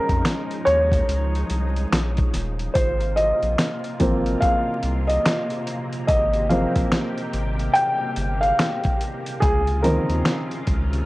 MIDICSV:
0, 0, Header, 1, 5, 480
1, 0, Start_track
1, 0, Key_signature, -4, "major"
1, 0, Tempo, 833333
1, 1585, Time_signature, 4, 2, 24, 8
1, 6368, End_track
2, 0, Start_track
2, 0, Title_t, "Felt piano"
2, 0, Program_c, 0, 0
2, 0, Control_c, 0, 64, 127
2, 0, Note_on_c, 0, 53, 51
2, 0, Note_on_c, 0, 56, 51
2, 0, Note_on_c, 0, 61, 62
2, 0, Note_on_c, 0, 70, 98
2, 375, Note_on_c, 0, 73, 105
2, 395, Note_off_c, 0, 70, 0
2, 1077, Note_off_c, 0, 73, 0
2, 1561, Note_off_c, 0, 53, 0
2, 1563, Note_off_c, 0, 56, 0
2, 1564, Note_off_c, 0, 61, 0
2, 1577, Note_on_c, 0, 72, 83
2, 1593, Control_c, 0, 64, 0
2, 1699, Control_c, 0, 64, 127
2, 1820, Note_on_c, 0, 75, 84
2, 1828, Note_off_c, 0, 72, 0
2, 2302, Note_on_c, 0, 53, 59
2, 2305, Note_on_c, 0, 58, 58
2, 2309, Note_on_c, 0, 60, 67
2, 2537, Note_on_c, 0, 77, 99
2, 2564, Note_off_c, 0, 75, 0
2, 2922, Note_on_c, 0, 75, 84
2, 2939, Note_off_c, 0, 77, 0
2, 3237, Note_off_c, 0, 75, 0
2, 3498, Note_on_c, 0, 75, 89
2, 3725, Note_off_c, 0, 75, 0
2, 3735, Note_off_c, 0, 53, 0
2, 3738, Note_off_c, 0, 58, 0
2, 3740, Note_on_c, 0, 77, 87
2, 3741, Note_off_c, 0, 60, 0
2, 3744, Note_on_c, 0, 53, 52
2, 3747, Note_on_c, 0, 58, 50
2, 3749, Note_on_c, 0, 60, 58
2, 4440, Note_off_c, 0, 77, 0
2, 4441, Note_off_c, 0, 53, 0
2, 4443, Note_off_c, 0, 58, 0
2, 4444, Note_off_c, 0, 60, 0
2, 4456, Note_on_c, 0, 79, 112
2, 4824, Note_off_c, 0, 79, 0
2, 4844, Note_on_c, 0, 77, 101
2, 5158, Note_off_c, 0, 77, 0
2, 5416, Note_on_c, 0, 68, 91
2, 5433, Control_c, 0, 64, 0
2, 5529, Control_c, 0, 64, 127
2, 5660, Note_on_c, 0, 70, 82
2, 5665, Note_on_c, 0, 51, 53
2, 5667, Note_on_c, 0, 53, 49
2, 5668, Note_off_c, 0, 68, 0
2, 5672, Note_on_c, 0, 60, 56
2, 6359, Note_off_c, 0, 70, 0
2, 6362, Note_off_c, 0, 51, 0
2, 6363, Note_off_c, 0, 53, 0
2, 6365, Note_off_c, 0, 60, 0
2, 6368, End_track
3, 0, Start_track
3, 0, Title_t, "String machine"
3, 0, Program_c, 1, 50
3, 0, Note_on_c, 1, 53, 83
3, 0, Note_on_c, 1, 56, 74
3, 0, Note_on_c, 1, 63, 92
3, 1562, Note_off_c, 1, 53, 0
3, 1566, Note_off_c, 1, 63, 0
3, 1567, Note_off_c, 1, 56, 0
3, 1585, Note_on_c, 1, 48, 83
3, 1585, Note_on_c, 1, 65, 92
3, 1586, Note_on_c, 1, 58, 74
3, 3486, Note_off_c, 1, 65, 0
3, 3506, Note_on_c, 1, 67, 88
3, 5402, Note_off_c, 1, 48, 0
3, 5402, Note_off_c, 1, 58, 0
3, 5406, Note_off_c, 1, 67, 0
3, 5423, Note_on_c, 1, 65, 85
3, 5424, Note_on_c, 1, 48, 78
3, 5425, Note_on_c, 1, 49, 84
3, 6368, Note_off_c, 1, 48, 0
3, 6368, Note_off_c, 1, 49, 0
3, 6368, Note_off_c, 1, 65, 0
3, 6368, End_track
4, 0, Start_track
4, 0, Title_t, "Sub bass"
4, 0, Program_c, 2, 38
4, 54, Note_on_c, 2, 41, 87
4, 133, Note_off_c, 2, 41, 0
4, 386, Note_on_c, 2, 39, 98
4, 591, Note_off_c, 2, 39, 0
4, 625, Note_on_c, 2, 37, 98
4, 830, Note_off_c, 2, 37, 0
4, 865, Note_on_c, 2, 36, 90
4, 1070, Note_off_c, 2, 36, 0
4, 1106, Note_on_c, 2, 34, 97
4, 1311, Note_off_c, 2, 34, 0
4, 1345, Note_on_c, 2, 27, 97
4, 1550, Note_off_c, 2, 27, 0
4, 1587, Note_on_c, 2, 32, 101
4, 1917, Note_off_c, 2, 32, 0
4, 1973, Note_on_c, 2, 34, 98
4, 2052, Note_off_c, 2, 34, 0
4, 2308, Note_on_c, 2, 32, 98
4, 2512, Note_off_c, 2, 32, 0
4, 2784, Note_on_c, 2, 36, 96
4, 2990, Note_off_c, 2, 36, 0
4, 3506, Note_on_c, 2, 32, 113
4, 3836, Note_off_c, 2, 32, 0
4, 3894, Note_on_c, 2, 34, 81
4, 3973, Note_off_c, 2, 34, 0
4, 4225, Note_on_c, 2, 32, 98
4, 4430, Note_off_c, 2, 32, 0
4, 4705, Note_on_c, 2, 31, 98
4, 4910, Note_off_c, 2, 31, 0
4, 5427, Note_on_c, 2, 37, 103
4, 5757, Note_off_c, 2, 37, 0
4, 5812, Note_on_c, 2, 39, 87
4, 5892, Note_off_c, 2, 39, 0
4, 6148, Note_on_c, 2, 37, 96
4, 6352, Note_off_c, 2, 37, 0
4, 6368, End_track
5, 0, Start_track
5, 0, Title_t, "Drums"
5, 53, Note_on_c, 9, 36, 83
5, 53, Note_on_c, 9, 42, 44
5, 111, Note_off_c, 9, 36, 0
5, 111, Note_off_c, 9, 42, 0
5, 143, Note_on_c, 9, 26, 80
5, 146, Note_on_c, 9, 38, 103
5, 147, Note_on_c, 9, 42, 72
5, 201, Note_off_c, 9, 26, 0
5, 203, Note_off_c, 9, 38, 0
5, 204, Note_off_c, 9, 42, 0
5, 293, Note_on_c, 9, 42, 34
5, 350, Note_off_c, 9, 42, 0
5, 384, Note_on_c, 9, 42, 66
5, 442, Note_off_c, 9, 42, 0
5, 529, Note_on_c, 9, 36, 82
5, 535, Note_on_c, 9, 42, 44
5, 586, Note_off_c, 9, 36, 0
5, 593, Note_off_c, 9, 42, 0
5, 628, Note_on_c, 9, 42, 74
5, 685, Note_off_c, 9, 42, 0
5, 778, Note_on_c, 9, 42, 35
5, 835, Note_off_c, 9, 42, 0
5, 862, Note_on_c, 9, 42, 57
5, 920, Note_off_c, 9, 42, 0
5, 1016, Note_on_c, 9, 42, 49
5, 1073, Note_off_c, 9, 42, 0
5, 1109, Note_on_c, 9, 26, 92
5, 1109, Note_on_c, 9, 42, 97
5, 1111, Note_on_c, 9, 38, 101
5, 1166, Note_off_c, 9, 26, 0
5, 1167, Note_off_c, 9, 42, 0
5, 1168, Note_off_c, 9, 38, 0
5, 1250, Note_on_c, 9, 42, 36
5, 1257, Note_on_c, 9, 36, 87
5, 1307, Note_off_c, 9, 42, 0
5, 1315, Note_off_c, 9, 36, 0
5, 1345, Note_on_c, 9, 38, 38
5, 1347, Note_on_c, 9, 42, 72
5, 1403, Note_off_c, 9, 38, 0
5, 1405, Note_off_c, 9, 42, 0
5, 1494, Note_on_c, 9, 42, 44
5, 1552, Note_off_c, 9, 42, 0
5, 1585, Note_on_c, 9, 42, 80
5, 1587, Note_on_c, 9, 36, 111
5, 1643, Note_off_c, 9, 42, 0
5, 1644, Note_off_c, 9, 36, 0
5, 1731, Note_on_c, 9, 42, 34
5, 1788, Note_off_c, 9, 42, 0
5, 1827, Note_on_c, 9, 42, 61
5, 1885, Note_off_c, 9, 42, 0
5, 1973, Note_on_c, 9, 42, 43
5, 2031, Note_off_c, 9, 42, 0
5, 2064, Note_on_c, 9, 26, 72
5, 2066, Note_on_c, 9, 38, 104
5, 2067, Note_on_c, 9, 42, 76
5, 2121, Note_off_c, 9, 26, 0
5, 2124, Note_off_c, 9, 38, 0
5, 2125, Note_off_c, 9, 42, 0
5, 2212, Note_on_c, 9, 42, 32
5, 2270, Note_off_c, 9, 42, 0
5, 2303, Note_on_c, 9, 42, 60
5, 2307, Note_on_c, 9, 36, 76
5, 2361, Note_off_c, 9, 42, 0
5, 2365, Note_off_c, 9, 36, 0
5, 2454, Note_on_c, 9, 42, 43
5, 2512, Note_off_c, 9, 42, 0
5, 2546, Note_on_c, 9, 42, 74
5, 2548, Note_on_c, 9, 36, 83
5, 2604, Note_off_c, 9, 42, 0
5, 2606, Note_off_c, 9, 36, 0
5, 2780, Note_on_c, 9, 42, 61
5, 2838, Note_off_c, 9, 42, 0
5, 2935, Note_on_c, 9, 42, 48
5, 2992, Note_off_c, 9, 42, 0
5, 3027, Note_on_c, 9, 26, 84
5, 3028, Note_on_c, 9, 42, 104
5, 3029, Note_on_c, 9, 38, 111
5, 3085, Note_off_c, 9, 26, 0
5, 3086, Note_off_c, 9, 42, 0
5, 3087, Note_off_c, 9, 38, 0
5, 3169, Note_on_c, 9, 42, 35
5, 3226, Note_off_c, 9, 42, 0
5, 3266, Note_on_c, 9, 42, 64
5, 3324, Note_off_c, 9, 42, 0
5, 3413, Note_on_c, 9, 42, 46
5, 3471, Note_off_c, 9, 42, 0
5, 3505, Note_on_c, 9, 42, 78
5, 3506, Note_on_c, 9, 36, 123
5, 3562, Note_off_c, 9, 42, 0
5, 3563, Note_off_c, 9, 36, 0
5, 3649, Note_on_c, 9, 42, 36
5, 3707, Note_off_c, 9, 42, 0
5, 3747, Note_on_c, 9, 42, 60
5, 3804, Note_off_c, 9, 42, 0
5, 3891, Note_on_c, 9, 42, 45
5, 3893, Note_on_c, 9, 36, 89
5, 3949, Note_off_c, 9, 42, 0
5, 3950, Note_off_c, 9, 36, 0
5, 3984, Note_on_c, 9, 26, 80
5, 3986, Note_on_c, 9, 38, 101
5, 3987, Note_on_c, 9, 42, 75
5, 4042, Note_off_c, 9, 26, 0
5, 4044, Note_off_c, 9, 38, 0
5, 4045, Note_off_c, 9, 42, 0
5, 4133, Note_on_c, 9, 42, 32
5, 4191, Note_off_c, 9, 42, 0
5, 4224, Note_on_c, 9, 42, 62
5, 4282, Note_off_c, 9, 42, 0
5, 4374, Note_on_c, 9, 42, 41
5, 4432, Note_off_c, 9, 42, 0
5, 4465, Note_on_c, 9, 42, 73
5, 4523, Note_off_c, 9, 42, 0
5, 4702, Note_on_c, 9, 42, 55
5, 4759, Note_off_c, 9, 42, 0
5, 4855, Note_on_c, 9, 42, 49
5, 4913, Note_off_c, 9, 42, 0
5, 4948, Note_on_c, 9, 26, 90
5, 4949, Note_on_c, 9, 42, 99
5, 4950, Note_on_c, 9, 38, 113
5, 5005, Note_off_c, 9, 26, 0
5, 5006, Note_off_c, 9, 42, 0
5, 5008, Note_off_c, 9, 38, 0
5, 5089, Note_on_c, 9, 42, 34
5, 5097, Note_on_c, 9, 36, 87
5, 5147, Note_off_c, 9, 42, 0
5, 5154, Note_off_c, 9, 36, 0
5, 5188, Note_on_c, 9, 42, 72
5, 5246, Note_off_c, 9, 42, 0
5, 5335, Note_on_c, 9, 42, 46
5, 5393, Note_off_c, 9, 42, 0
5, 5427, Note_on_c, 9, 36, 122
5, 5427, Note_on_c, 9, 42, 80
5, 5484, Note_off_c, 9, 36, 0
5, 5485, Note_off_c, 9, 42, 0
5, 5572, Note_on_c, 9, 42, 34
5, 5629, Note_off_c, 9, 42, 0
5, 5669, Note_on_c, 9, 42, 61
5, 5727, Note_off_c, 9, 42, 0
5, 5815, Note_on_c, 9, 42, 49
5, 5873, Note_off_c, 9, 42, 0
5, 5905, Note_on_c, 9, 26, 76
5, 5907, Note_on_c, 9, 38, 106
5, 5908, Note_on_c, 9, 42, 75
5, 5963, Note_off_c, 9, 26, 0
5, 5965, Note_off_c, 9, 38, 0
5, 5966, Note_off_c, 9, 42, 0
5, 6055, Note_on_c, 9, 42, 33
5, 6113, Note_off_c, 9, 42, 0
5, 6145, Note_on_c, 9, 42, 58
5, 6148, Note_on_c, 9, 36, 79
5, 6203, Note_off_c, 9, 42, 0
5, 6206, Note_off_c, 9, 36, 0
5, 6296, Note_on_c, 9, 42, 46
5, 6354, Note_off_c, 9, 42, 0
5, 6368, End_track
0, 0, End_of_file